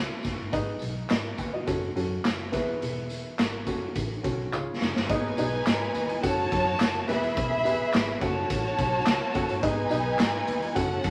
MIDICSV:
0, 0, Header, 1, 5, 480
1, 0, Start_track
1, 0, Tempo, 570885
1, 443, Time_signature, 4, 2, 24, 8
1, 4762, Tempo, 566038
1, 9374, End_track
2, 0, Start_track
2, 0, Title_t, "Violin section"
2, 0, Program_c, 0, 48
2, 4283, Note_on_c, 0, 63, 83
2, 4283, Note_on_c, 0, 80, 94
2, 4288, Note_on_c, 0, 71, 88
2, 5225, Note_off_c, 0, 63, 0
2, 5225, Note_off_c, 0, 80, 0
2, 5228, Note_off_c, 0, 71, 0
2, 5242, Note_on_c, 0, 81, 103
2, 5244, Note_on_c, 0, 66, 85
2, 5245, Note_on_c, 0, 73, 85
2, 5951, Note_off_c, 0, 81, 0
2, 5952, Note_off_c, 0, 66, 0
2, 5952, Note_off_c, 0, 73, 0
2, 5964, Note_on_c, 0, 76, 85
2, 5965, Note_on_c, 0, 68, 78
2, 5967, Note_on_c, 0, 83, 85
2, 6907, Note_off_c, 0, 76, 0
2, 6908, Note_off_c, 0, 68, 0
2, 6909, Note_off_c, 0, 83, 0
2, 6932, Note_on_c, 0, 66, 83
2, 6933, Note_on_c, 0, 73, 84
2, 6935, Note_on_c, 0, 81, 94
2, 8105, Note_off_c, 0, 66, 0
2, 8105, Note_off_c, 0, 73, 0
2, 8106, Note_off_c, 0, 81, 0
2, 8138, Note_on_c, 0, 63, 93
2, 8138, Note_on_c, 0, 71, 86
2, 8138, Note_on_c, 0, 80, 95
2, 9071, Note_off_c, 0, 63, 0
2, 9071, Note_off_c, 0, 71, 0
2, 9071, Note_off_c, 0, 80, 0
2, 9091, Note_on_c, 0, 69, 84
2, 9093, Note_on_c, 0, 61, 90
2, 9093, Note_on_c, 0, 78, 100
2, 9374, Note_off_c, 0, 61, 0
2, 9374, Note_off_c, 0, 69, 0
2, 9374, Note_off_c, 0, 78, 0
2, 9374, End_track
3, 0, Start_track
3, 0, Title_t, "Upright piano"
3, 0, Program_c, 1, 0
3, 0, Note_on_c, 1, 61, 82
3, 0, Note_on_c, 1, 66, 70
3, 0, Note_on_c, 1, 69, 70
3, 0, Note_on_c, 1, 73, 82
3, 295, Note_off_c, 1, 61, 0
3, 296, Note_off_c, 1, 66, 0
3, 297, Note_off_c, 1, 69, 0
3, 298, Note_off_c, 1, 73, 0
3, 439, Note_on_c, 1, 63, 83
3, 440, Note_on_c, 1, 44, 70
3, 442, Note_on_c, 1, 71, 73
3, 443, Note_on_c, 1, 68, 71
3, 444, Note_on_c, 1, 75, 95
3, 683, Note_off_c, 1, 71, 0
3, 684, Note_off_c, 1, 68, 0
3, 685, Note_off_c, 1, 75, 0
3, 930, Note_on_c, 1, 83, 61
3, 933, Note_on_c, 1, 75, 55
3, 1130, Note_off_c, 1, 44, 0
3, 1156, Note_off_c, 1, 83, 0
3, 1157, Note_off_c, 1, 75, 0
3, 1168, Note_on_c, 1, 80, 63
3, 1174, Note_on_c, 1, 71, 55
3, 1208, Note_off_c, 1, 63, 0
3, 1281, Note_off_c, 1, 80, 0
3, 1284, Note_off_c, 1, 71, 0
3, 1290, Note_on_c, 1, 75, 65
3, 1295, Note_on_c, 1, 66, 52
3, 1389, Note_off_c, 1, 66, 0
3, 1401, Note_on_c, 1, 66, 81
3, 1402, Note_on_c, 1, 61, 91
3, 1404, Note_on_c, 1, 69, 82
3, 1407, Note_on_c, 1, 73, 92
3, 1516, Note_off_c, 1, 75, 0
3, 1596, Note_off_c, 1, 61, 0
3, 1596, Note_off_c, 1, 66, 0
3, 1598, Note_off_c, 1, 69, 0
3, 1599, Note_off_c, 1, 73, 0
3, 1646, Note_on_c, 1, 66, 72
3, 1647, Note_on_c, 1, 61, 83
3, 1650, Note_on_c, 1, 69, 72
3, 1652, Note_on_c, 1, 73, 90
3, 2118, Note_on_c, 1, 59, 80
3, 2120, Note_on_c, 1, 52, 69
3, 2123, Note_on_c, 1, 64, 74
3, 2125, Note_on_c, 1, 68, 78
3, 2126, Note_on_c, 1, 71, 86
3, 2127, Note_off_c, 1, 61, 0
3, 2127, Note_off_c, 1, 66, 0
3, 2129, Note_off_c, 1, 69, 0
3, 2130, Note_off_c, 1, 73, 0
3, 2811, Note_off_c, 1, 52, 0
3, 2891, Note_off_c, 1, 59, 0
3, 2894, Note_off_c, 1, 64, 0
3, 2895, Note_off_c, 1, 68, 0
3, 2895, Note_off_c, 1, 71, 0
3, 3085, Note_on_c, 1, 61, 77
3, 3085, Note_on_c, 1, 66, 71
3, 3085, Note_on_c, 1, 69, 75
3, 3090, Note_on_c, 1, 73, 92
3, 3470, Note_off_c, 1, 61, 0
3, 3470, Note_off_c, 1, 66, 0
3, 3470, Note_off_c, 1, 69, 0
3, 3473, Note_off_c, 1, 73, 0
3, 3560, Note_on_c, 1, 61, 81
3, 3563, Note_on_c, 1, 69, 69
3, 3564, Note_on_c, 1, 66, 73
3, 3566, Note_on_c, 1, 73, 82
3, 3794, Note_off_c, 1, 61, 0
3, 3801, Note_off_c, 1, 73, 0
3, 3805, Note_off_c, 1, 66, 0
3, 3805, Note_off_c, 1, 69, 0
3, 3807, Note_on_c, 1, 61, 78
3, 3810, Note_on_c, 1, 65, 75
3, 3812, Note_on_c, 1, 68, 75
3, 3813, Note_on_c, 1, 49, 67
3, 3814, Note_on_c, 1, 73, 92
3, 4190, Note_off_c, 1, 61, 0
3, 4192, Note_off_c, 1, 65, 0
3, 4193, Note_off_c, 1, 68, 0
3, 4194, Note_off_c, 1, 73, 0
3, 4255, Note_off_c, 1, 49, 0
3, 4282, Note_on_c, 1, 59, 91
3, 4284, Note_on_c, 1, 63, 75
3, 4284, Note_on_c, 1, 68, 78
3, 4285, Note_on_c, 1, 44, 73
3, 4285, Note_on_c, 1, 71, 81
3, 4286, Note_on_c, 1, 75, 96
3, 4474, Note_off_c, 1, 59, 0
3, 4475, Note_off_c, 1, 63, 0
3, 4476, Note_off_c, 1, 68, 0
3, 4476, Note_off_c, 1, 71, 0
3, 4477, Note_off_c, 1, 75, 0
3, 4522, Note_on_c, 1, 59, 72
3, 4526, Note_on_c, 1, 68, 64
3, 4526, Note_on_c, 1, 71, 72
3, 4527, Note_on_c, 1, 63, 69
3, 4528, Note_on_c, 1, 75, 81
3, 4971, Note_off_c, 1, 44, 0
3, 5240, Note_on_c, 1, 61, 93
3, 5240, Note_on_c, 1, 66, 85
3, 5242, Note_on_c, 1, 78, 105
3, 5243, Note_on_c, 1, 69, 91
3, 5244, Note_off_c, 1, 59, 0
3, 5246, Note_off_c, 1, 68, 0
3, 5246, Note_off_c, 1, 71, 0
3, 5247, Note_off_c, 1, 63, 0
3, 5247, Note_off_c, 1, 75, 0
3, 5247, Note_on_c, 1, 73, 83
3, 5820, Note_off_c, 1, 61, 0
3, 5820, Note_off_c, 1, 66, 0
3, 5821, Note_off_c, 1, 78, 0
3, 5822, Note_off_c, 1, 69, 0
3, 5824, Note_off_c, 1, 73, 0
3, 5963, Note_on_c, 1, 68, 79
3, 5964, Note_on_c, 1, 64, 76
3, 5965, Note_on_c, 1, 59, 89
3, 5966, Note_on_c, 1, 52, 73
3, 5966, Note_on_c, 1, 71, 76
3, 5967, Note_on_c, 1, 76, 94
3, 6350, Note_off_c, 1, 64, 0
3, 6350, Note_off_c, 1, 68, 0
3, 6351, Note_off_c, 1, 59, 0
3, 6351, Note_off_c, 1, 71, 0
3, 6352, Note_off_c, 1, 76, 0
3, 6442, Note_on_c, 1, 59, 74
3, 6443, Note_on_c, 1, 64, 70
3, 6444, Note_on_c, 1, 67, 59
3, 6444, Note_on_c, 1, 76, 86
3, 6449, Note_on_c, 1, 71, 69
3, 6499, Note_on_c, 1, 68, 68
3, 6501, Note_off_c, 1, 67, 0
3, 6653, Note_off_c, 1, 52, 0
3, 6921, Note_on_c, 1, 61, 84
3, 6922, Note_on_c, 1, 69, 84
3, 6924, Note_on_c, 1, 66, 80
3, 6925, Note_off_c, 1, 59, 0
3, 6925, Note_off_c, 1, 64, 0
3, 6925, Note_on_c, 1, 73, 79
3, 6926, Note_off_c, 1, 76, 0
3, 6926, Note_on_c, 1, 78, 97
3, 6928, Note_off_c, 1, 71, 0
3, 6953, Note_off_c, 1, 68, 0
3, 7632, Note_off_c, 1, 78, 0
3, 7645, Note_on_c, 1, 78, 75
3, 7692, Note_off_c, 1, 61, 0
3, 7693, Note_off_c, 1, 66, 0
3, 7693, Note_off_c, 1, 69, 0
3, 7694, Note_off_c, 1, 73, 0
3, 7876, Note_off_c, 1, 78, 0
3, 7882, Note_on_c, 1, 61, 92
3, 7883, Note_on_c, 1, 69, 76
3, 7884, Note_on_c, 1, 66, 78
3, 7887, Note_on_c, 1, 73, 79
3, 7889, Note_on_c, 1, 78, 96
3, 8075, Note_off_c, 1, 61, 0
3, 8076, Note_off_c, 1, 69, 0
3, 8077, Note_off_c, 1, 66, 0
3, 8078, Note_off_c, 1, 73, 0
3, 8079, Note_off_c, 1, 78, 0
3, 8122, Note_on_c, 1, 59, 87
3, 8122, Note_on_c, 1, 63, 82
3, 8123, Note_on_c, 1, 68, 80
3, 8123, Note_on_c, 1, 75, 97
3, 8124, Note_on_c, 1, 44, 79
3, 8125, Note_on_c, 1, 71, 80
3, 8315, Note_off_c, 1, 59, 0
3, 8315, Note_off_c, 1, 63, 0
3, 8316, Note_off_c, 1, 68, 0
3, 8316, Note_off_c, 1, 75, 0
3, 8317, Note_off_c, 1, 71, 0
3, 8354, Note_on_c, 1, 59, 78
3, 8354, Note_on_c, 1, 63, 73
3, 8356, Note_on_c, 1, 68, 68
3, 8361, Note_on_c, 1, 71, 68
3, 8361, Note_on_c, 1, 75, 85
3, 8810, Note_off_c, 1, 44, 0
3, 9075, Note_on_c, 1, 61, 92
3, 9075, Note_on_c, 1, 66, 87
3, 9075, Note_on_c, 1, 69, 85
3, 9076, Note_on_c, 1, 73, 84
3, 9077, Note_on_c, 1, 78, 106
3, 9078, Note_off_c, 1, 59, 0
3, 9078, Note_off_c, 1, 63, 0
3, 9079, Note_off_c, 1, 68, 0
3, 9081, Note_off_c, 1, 75, 0
3, 9082, Note_off_c, 1, 71, 0
3, 9374, Note_off_c, 1, 61, 0
3, 9374, Note_off_c, 1, 66, 0
3, 9374, Note_off_c, 1, 69, 0
3, 9374, Note_off_c, 1, 73, 0
3, 9374, Note_off_c, 1, 78, 0
3, 9374, End_track
4, 0, Start_track
4, 0, Title_t, "Fingered electric bass"
4, 0, Program_c, 2, 33
4, 207, Note_on_c, 2, 30, 77
4, 293, Note_off_c, 2, 30, 0
4, 330, Note_on_c, 2, 31, 75
4, 416, Note_off_c, 2, 31, 0
4, 445, Note_on_c, 2, 32, 104
4, 620, Note_off_c, 2, 32, 0
4, 689, Note_on_c, 2, 35, 86
4, 863, Note_off_c, 2, 35, 0
4, 932, Note_on_c, 2, 44, 100
4, 1105, Note_off_c, 2, 44, 0
4, 1167, Note_on_c, 2, 39, 83
4, 1342, Note_off_c, 2, 39, 0
4, 1413, Note_on_c, 2, 30, 93
4, 1586, Note_off_c, 2, 30, 0
4, 1648, Note_on_c, 2, 42, 97
4, 1823, Note_off_c, 2, 42, 0
4, 1892, Note_on_c, 2, 30, 75
4, 2134, Note_off_c, 2, 30, 0
4, 2134, Note_on_c, 2, 28, 94
4, 2307, Note_off_c, 2, 28, 0
4, 2375, Note_on_c, 2, 28, 108
4, 2723, Note_off_c, 2, 28, 0
4, 2851, Note_on_c, 2, 32, 82
4, 3086, Note_off_c, 2, 32, 0
4, 3086, Note_on_c, 2, 30, 91
4, 3262, Note_off_c, 2, 30, 0
4, 3331, Note_on_c, 2, 33, 95
4, 3505, Note_off_c, 2, 33, 0
4, 3570, Note_on_c, 2, 35, 79
4, 3744, Note_off_c, 2, 35, 0
4, 3807, Note_on_c, 2, 37, 79
4, 3895, Note_off_c, 2, 37, 0
4, 4048, Note_on_c, 2, 30, 78
4, 4135, Note_off_c, 2, 30, 0
4, 4171, Note_on_c, 2, 31, 83
4, 4257, Note_off_c, 2, 31, 0
4, 4287, Note_on_c, 2, 32, 116
4, 4461, Note_off_c, 2, 32, 0
4, 4529, Note_on_c, 2, 35, 88
4, 4702, Note_off_c, 2, 35, 0
4, 4770, Note_on_c, 2, 44, 105
4, 4944, Note_off_c, 2, 44, 0
4, 5002, Note_on_c, 2, 39, 87
4, 5179, Note_off_c, 2, 39, 0
4, 5247, Note_on_c, 2, 30, 105
4, 5422, Note_off_c, 2, 30, 0
4, 5489, Note_on_c, 2, 42, 107
4, 5664, Note_off_c, 2, 42, 0
4, 5726, Note_on_c, 2, 30, 81
4, 5902, Note_off_c, 2, 30, 0
4, 5974, Note_on_c, 2, 28, 101
4, 6147, Note_off_c, 2, 28, 0
4, 6213, Note_on_c, 2, 28, 102
4, 6562, Note_off_c, 2, 28, 0
4, 6694, Note_on_c, 2, 32, 92
4, 6867, Note_off_c, 2, 32, 0
4, 6927, Note_on_c, 2, 30, 96
4, 7103, Note_off_c, 2, 30, 0
4, 7171, Note_on_c, 2, 33, 104
4, 7345, Note_off_c, 2, 33, 0
4, 7412, Note_on_c, 2, 35, 92
4, 7586, Note_off_c, 2, 35, 0
4, 7651, Note_on_c, 2, 37, 88
4, 7737, Note_off_c, 2, 37, 0
4, 7892, Note_on_c, 2, 30, 84
4, 7978, Note_off_c, 2, 30, 0
4, 8009, Note_on_c, 2, 31, 87
4, 8095, Note_off_c, 2, 31, 0
4, 8129, Note_on_c, 2, 32, 113
4, 8303, Note_off_c, 2, 32, 0
4, 8365, Note_on_c, 2, 35, 88
4, 8540, Note_off_c, 2, 35, 0
4, 8610, Note_on_c, 2, 44, 112
4, 8783, Note_off_c, 2, 44, 0
4, 8847, Note_on_c, 2, 39, 85
4, 9021, Note_off_c, 2, 39, 0
4, 9087, Note_on_c, 2, 30, 107
4, 9260, Note_off_c, 2, 30, 0
4, 9326, Note_on_c, 2, 42, 106
4, 9374, Note_off_c, 2, 42, 0
4, 9374, End_track
5, 0, Start_track
5, 0, Title_t, "Drums"
5, 191, Note_on_c, 9, 54, 52
5, 206, Note_on_c, 9, 42, 67
5, 208, Note_on_c, 9, 36, 88
5, 213, Note_on_c, 9, 38, 38
5, 275, Note_off_c, 9, 54, 0
5, 290, Note_off_c, 9, 42, 0
5, 292, Note_off_c, 9, 36, 0
5, 297, Note_off_c, 9, 38, 0
5, 438, Note_on_c, 9, 54, 31
5, 446, Note_on_c, 9, 36, 101
5, 450, Note_on_c, 9, 42, 77
5, 522, Note_off_c, 9, 54, 0
5, 530, Note_off_c, 9, 36, 0
5, 534, Note_off_c, 9, 42, 0
5, 665, Note_on_c, 9, 54, 51
5, 686, Note_on_c, 9, 42, 64
5, 749, Note_off_c, 9, 54, 0
5, 770, Note_off_c, 9, 42, 0
5, 921, Note_on_c, 9, 39, 86
5, 921, Note_on_c, 9, 54, 91
5, 928, Note_on_c, 9, 42, 91
5, 931, Note_on_c, 9, 38, 113
5, 1005, Note_off_c, 9, 39, 0
5, 1005, Note_off_c, 9, 54, 0
5, 1012, Note_off_c, 9, 42, 0
5, 1015, Note_off_c, 9, 38, 0
5, 1159, Note_on_c, 9, 54, 58
5, 1164, Note_on_c, 9, 36, 76
5, 1166, Note_on_c, 9, 42, 61
5, 1243, Note_off_c, 9, 54, 0
5, 1248, Note_off_c, 9, 36, 0
5, 1250, Note_off_c, 9, 42, 0
5, 1406, Note_on_c, 9, 54, 46
5, 1407, Note_on_c, 9, 42, 83
5, 1410, Note_on_c, 9, 36, 84
5, 1490, Note_off_c, 9, 54, 0
5, 1491, Note_off_c, 9, 42, 0
5, 1494, Note_off_c, 9, 36, 0
5, 1652, Note_on_c, 9, 42, 70
5, 1653, Note_on_c, 9, 54, 34
5, 1737, Note_off_c, 9, 42, 0
5, 1737, Note_off_c, 9, 54, 0
5, 1889, Note_on_c, 9, 42, 94
5, 1890, Note_on_c, 9, 39, 102
5, 1890, Note_on_c, 9, 54, 99
5, 1892, Note_on_c, 9, 38, 94
5, 1973, Note_off_c, 9, 42, 0
5, 1974, Note_off_c, 9, 39, 0
5, 1974, Note_off_c, 9, 54, 0
5, 1976, Note_off_c, 9, 38, 0
5, 2126, Note_on_c, 9, 42, 69
5, 2126, Note_on_c, 9, 54, 51
5, 2132, Note_on_c, 9, 36, 95
5, 2133, Note_on_c, 9, 38, 37
5, 2210, Note_off_c, 9, 42, 0
5, 2210, Note_off_c, 9, 54, 0
5, 2216, Note_off_c, 9, 36, 0
5, 2217, Note_off_c, 9, 38, 0
5, 2369, Note_on_c, 9, 54, 30
5, 2372, Note_on_c, 9, 42, 79
5, 2453, Note_off_c, 9, 54, 0
5, 2457, Note_off_c, 9, 42, 0
5, 2600, Note_on_c, 9, 54, 53
5, 2607, Note_on_c, 9, 42, 65
5, 2684, Note_off_c, 9, 54, 0
5, 2691, Note_off_c, 9, 42, 0
5, 2849, Note_on_c, 9, 39, 87
5, 2849, Note_on_c, 9, 54, 90
5, 2851, Note_on_c, 9, 42, 93
5, 2854, Note_on_c, 9, 38, 115
5, 2933, Note_off_c, 9, 39, 0
5, 2933, Note_off_c, 9, 54, 0
5, 2935, Note_off_c, 9, 42, 0
5, 2938, Note_off_c, 9, 38, 0
5, 3082, Note_on_c, 9, 54, 58
5, 3083, Note_on_c, 9, 42, 59
5, 3084, Note_on_c, 9, 36, 78
5, 3166, Note_off_c, 9, 54, 0
5, 3167, Note_off_c, 9, 42, 0
5, 3168, Note_off_c, 9, 36, 0
5, 3325, Note_on_c, 9, 42, 84
5, 3326, Note_on_c, 9, 54, 44
5, 3327, Note_on_c, 9, 36, 82
5, 3409, Note_off_c, 9, 42, 0
5, 3410, Note_off_c, 9, 54, 0
5, 3412, Note_off_c, 9, 36, 0
5, 3568, Note_on_c, 9, 36, 90
5, 3568, Note_on_c, 9, 42, 68
5, 3571, Note_on_c, 9, 54, 33
5, 3652, Note_off_c, 9, 36, 0
5, 3652, Note_off_c, 9, 42, 0
5, 3655, Note_off_c, 9, 54, 0
5, 3809, Note_on_c, 9, 39, 95
5, 3809, Note_on_c, 9, 54, 92
5, 3893, Note_off_c, 9, 39, 0
5, 3893, Note_off_c, 9, 54, 0
5, 4049, Note_on_c, 9, 54, 49
5, 4053, Note_on_c, 9, 38, 84
5, 4133, Note_off_c, 9, 54, 0
5, 4137, Note_off_c, 9, 38, 0
5, 4173, Note_on_c, 9, 38, 78
5, 4257, Note_off_c, 9, 38, 0
5, 4285, Note_on_c, 9, 36, 112
5, 4285, Note_on_c, 9, 42, 83
5, 4369, Note_off_c, 9, 36, 0
5, 4369, Note_off_c, 9, 42, 0
5, 4516, Note_on_c, 9, 54, 59
5, 4523, Note_on_c, 9, 42, 76
5, 4600, Note_off_c, 9, 54, 0
5, 4607, Note_off_c, 9, 42, 0
5, 4761, Note_on_c, 9, 39, 97
5, 4761, Note_on_c, 9, 54, 101
5, 4764, Note_on_c, 9, 42, 98
5, 4767, Note_on_c, 9, 38, 127
5, 4846, Note_off_c, 9, 39, 0
5, 4846, Note_off_c, 9, 54, 0
5, 4849, Note_off_c, 9, 42, 0
5, 4851, Note_off_c, 9, 38, 0
5, 4999, Note_on_c, 9, 54, 62
5, 5000, Note_on_c, 9, 42, 70
5, 5084, Note_off_c, 9, 54, 0
5, 5085, Note_off_c, 9, 42, 0
5, 5125, Note_on_c, 9, 42, 48
5, 5210, Note_off_c, 9, 42, 0
5, 5244, Note_on_c, 9, 54, 53
5, 5246, Note_on_c, 9, 36, 91
5, 5247, Note_on_c, 9, 42, 94
5, 5329, Note_off_c, 9, 54, 0
5, 5331, Note_off_c, 9, 36, 0
5, 5331, Note_off_c, 9, 42, 0
5, 5486, Note_on_c, 9, 54, 38
5, 5489, Note_on_c, 9, 36, 98
5, 5490, Note_on_c, 9, 42, 78
5, 5571, Note_off_c, 9, 54, 0
5, 5573, Note_off_c, 9, 36, 0
5, 5575, Note_off_c, 9, 42, 0
5, 5723, Note_on_c, 9, 39, 102
5, 5723, Note_on_c, 9, 54, 109
5, 5730, Note_on_c, 9, 42, 102
5, 5734, Note_on_c, 9, 38, 109
5, 5808, Note_off_c, 9, 39, 0
5, 5808, Note_off_c, 9, 54, 0
5, 5815, Note_off_c, 9, 42, 0
5, 5819, Note_off_c, 9, 38, 0
5, 5962, Note_on_c, 9, 54, 53
5, 5972, Note_on_c, 9, 42, 73
5, 5979, Note_on_c, 9, 38, 41
5, 6047, Note_off_c, 9, 54, 0
5, 6057, Note_off_c, 9, 42, 0
5, 6064, Note_off_c, 9, 38, 0
5, 6094, Note_on_c, 9, 42, 52
5, 6179, Note_off_c, 9, 42, 0
5, 6206, Note_on_c, 9, 54, 30
5, 6209, Note_on_c, 9, 36, 118
5, 6213, Note_on_c, 9, 42, 81
5, 6291, Note_off_c, 9, 54, 0
5, 6294, Note_off_c, 9, 36, 0
5, 6297, Note_off_c, 9, 42, 0
5, 6437, Note_on_c, 9, 54, 56
5, 6453, Note_on_c, 9, 42, 74
5, 6522, Note_off_c, 9, 54, 0
5, 6537, Note_off_c, 9, 42, 0
5, 6686, Note_on_c, 9, 39, 97
5, 6686, Note_on_c, 9, 54, 94
5, 6695, Note_on_c, 9, 42, 94
5, 6698, Note_on_c, 9, 38, 127
5, 6770, Note_off_c, 9, 39, 0
5, 6770, Note_off_c, 9, 54, 0
5, 6780, Note_off_c, 9, 42, 0
5, 6783, Note_off_c, 9, 38, 0
5, 6924, Note_on_c, 9, 54, 58
5, 6925, Note_on_c, 9, 36, 89
5, 6926, Note_on_c, 9, 42, 63
5, 7009, Note_off_c, 9, 36, 0
5, 7009, Note_off_c, 9, 54, 0
5, 7010, Note_off_c, 9, 42, 0
5, 7166, Note_on_c, 9, 54, 52
5, 7167, Note_on_c, 9, 42, 97
5, 7169, Note_on_c, 9, 36, 96
5, 7251, Note_off_c, 9, 54, 0
5, 7252, Note_off_c, 9, 42, 0
5, 7254, Note_off_c, 9, 36, 0
5, 7406, Note_on_c, 9, 54, 39
5, 7410, Note_on_c, 9, 36, 93
5, 7410, Note_on_c, 9, 42, 76
5, 7491, Note_off_c, 9, 54, 0
5, 7494, Note_off_c, 9, 42, 0
5, 7495, Note_off_c, 9, 36, 0
5, 7643, Note_on_c, 9, 39, 104
5, 7643, Note_on_c, 9, 42, 94
5, 7643, Note_on_c, 9, 54, 105
5, 7647, Note_on_c, 9, 38, 112
5, 7728, Note_off_c, 9, 39, 0
5, 7728, Note_off_c, 9, 42, 0
5, 7728, Note_off_c, 9, 54, 0
5, 7732, Note_off_c, 9, 38, 0
5, 7879, Note_on_c, 9, 54, 55
5, 7886, Note_on_c, 9, 42, 71
5, 7890, Note_on_c, 9, 36, 98
5, 7964, Note_off_c, 9, 54, 0
5, 7971, Note_off_c, 9, 42, 0
5, 7975, Note_off_c, 9, 36, 0
5, 8007, Note_on_c, 9, 42, 51
5, 8092, Note_off_c, 9, 42, 0
5, 8124, Note_on_c, 9, 42, 80
5, 8126, Note_on_c, 9, 36, 117
5, 8209, Note_off_c, 9, 42, 0
5, 8211, Note_off_c, 9, 36, 0
5, 8347, Note_on_c, 9, 54, 62
5, 8363, Note_on_c, 9, 42, 70
5, 8432, Note_off_c, 9, 54, 0
5, 8448, Note_off_c, 9, 42, 0
5, 8597, Note_on_c, 9, 39, 95
5, 8597, Note_on_c, 9, 54, 97
5, 8606, Note_on_c, 9, 42, 104
5, 8608, Note_on_c, 9, 38, 127
5, 8682, Note_off_c, 9, 39, 0
5, 8682, Note_off_c, 9, 54, 0
5, 8691, Note_off_c, 9, 42, 0
5, 8693, Note_off_c, 9, 38, 0
5, 8838, Note_on_c, 9, 54, 58
5, 8842, Note_on_c, 9, 42, 65
5, 8923, Note_off_c, 9, 54, 0
5, 8927, Note_off_c, 9, 42, 0
5, 8967, Note_on_c, 9, 42, 51
5, 9052, Note_off_c, 9, 42, 0
5, 9082, Note_on_c, 9, 42, 92
5, 9084, Note_on_c, 9, 54, 51
5, 9085, Note_on_c, 9, 36, 93
5, 9167, Note_off_c, 9, 42, 0
5, 9169, Note_off_c, 9, 54, 0
5, 9170, Note_off_c, 9, 36, 0
5, 9320, Note_on_c, 9, 42, 77
5, 9324, Note_on_c, 9, 36, 98
5, 9328, Note_on_c, 9, 54, 37
5, 9374, Note_off_c, 9, 36, 0
5, 9374, Note_off_c, 9, 42, 0
5, 9374, Note_off_c, 9, 54, 0
5, 9374, End_track
0, 0, End_of_file